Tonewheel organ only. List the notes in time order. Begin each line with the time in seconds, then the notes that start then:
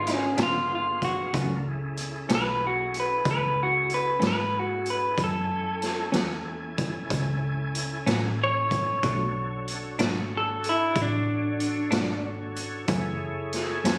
Already playing: D3 B3 G#4 F5
1.34 D4 F4 A4 A#4
1.66 C#4 E4 G#4 A4
5.17 C#4 E4 A4 G#5
9.04 D4 F#4 A4 C#5
12.89 E4 G#4 A4 C#5